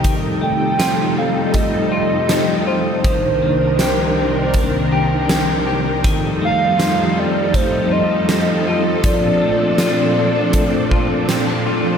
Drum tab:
HH |x-x-x-x-|x-x-x-x-|x-x-x-x-|x-x-x-x-|
SD |--o---o-|--o---o-|--o---o-|--o---o-|
BD |o---o---|o---o---|o---o---|o---oo--|